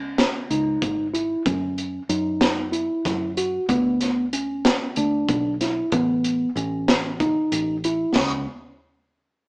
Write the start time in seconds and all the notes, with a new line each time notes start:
Already playing: C#2 C#4
0.18 snare, closed hi-hat
0.50 C#2 D#4, closed hi-hat
0.82 G#1, kick, closed hi-hat
1.14 E4, closed hi-hat
1.46 F#2 C#4, kick, closed hi-hat
1.78 closed hi-hat
2.09 F#2 D#4, closed hi-hat
2.41 snare, closed hi-hat
2.72 E4, closed hi-hat
3.05 F#2, kick, snare, closed hi-hat
3.37 F#4, closed hi-hat
3.69 D2 B3, kick, closed hi-hat
4.01 snare, closed hi-hat
4.33 C#4, closed hi-hat
4.65 snare, closed hi-hat
4.96 D2 D4, closed hi-hat
5.29 B1, kick, closed hi-hat
5.61 E4, snare, closed hi-hat
5.92 A1 B3, kick, closed hi-hat
6.24 closed hi-hat
6.56 A1 C#4, closed hi-hat
6.88 snare, closed hi-hat
7.20 D#4, kick, closed hi-hat
7.52 A1, closed hi-hat
7.84 E4, closed hi-hat
8.16 C#2 C#4, snare, floor tom, crash